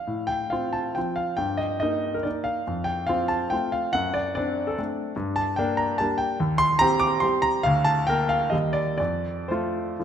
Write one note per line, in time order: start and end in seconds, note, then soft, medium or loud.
0.00 0.28 F5 medium
0.07 0.50 A2 medium
0.27 0.51 G5 medium
0.50 0.93 C4 soft
0.50 0.93 F4 soft
0.50 0.74 F5 medium
0.73 0.95 A5 medium
0.95 1.35 F3 soft
0.95 1.35 C4 soft
0.95 1.35 F4 soft
0.95 1.17 G5 medium
1.16 1.37 F5 medium
1.37 1.80 G2 soft
1.37 1.58 G5 medium
1.57 1.78 D#5 medium
1.80 2.22 A#3 soft
1.80 2.22 D#4 medium
1.80 2.14 D#5 medium
2.14 2.25 A#4 medium
2.23 2.62 A#3 soft
2.23 2.63 D#4 soft
2.23 2.45 D5 medium
2.44 2.86 F5 medium
2.67 3.08 F2 medium
2.84 3.08 G5 medium
3.07 3.49 C4 medium
3.07 3.49 F4 medium
3.07 3.30 F5 medium
3.28 3.51 A5 medium
3.50 3.90 A3 soft
3.50 3.91 C4 soft
3.50 3.91 F4 soft
3.50 3.73 G5 medium
3.72 3.94 F5 medium
3.93 4.36 F#2 medium
3.93 4.15 F#5 medium
4.14 4.34 D5 medium
4.35 4.75 C4 medium
4.35 4.75 D4 medium
4.35 4.68 D5 medium
4.67 4.78 A4 medium
4.78 5.14 A3 soft
4.78 5.14 C4 soft
4.78 5.15 D4 soft
5.16 5.57 G2 medium
5.36 5.58 A5 medium
5.56 5.96 A#3 medium
5.56 5.96 D4 medium
5.56 5.79 G5 medium
5.77 5.99 A#5 medium
5.98 6.36 G3 soft
5.98 6.37 A#3 soft
5.98 6.37 D4 medium
5.98 6.20 A5 medium
6.18 6.39 G5 medium
6.40 6.80 D#2 medium
6.58 6.80 C6 loud
6.79 7.19 C4 medium
6.79 7.19 G4 medium
6.79 7.01 A#5 loud
7.00 7.22 D6 loud
7.20 7.61 G3 soft
7.20 7.61 C4 soft
7.20 7.61 G4 medium
7.20 7.43 C6 medium
7.42 7.64 A#5 loud
7.63 8.08 D2 medium
7.63 7.86 F5 loud
7.84 8.08 A5 loud
8.07 8.49 A#3 medium
8.07 8.49 A#4 medium
8.07 8.30 G5 medium
8.29 8.52 F5 medium
8.50 8.98 D#2 medium
8.50 8.95 G3 soft
8.50 8.95 A#3 soft
8.50 8.95 A#4 soft
8.50 8.74 D#5 medium
8.73 8.96 D5 medium
8.98 9.48 F2 medium
8.98 9.48 D5 medium
9.48 9.96 A3 medium
9.48 9.96 F4 medium
9.48 10.04 C5 medium
9.99 10.04 F3 soft
9.99 10.04 A3 soft
9.99 10.04 F4 soft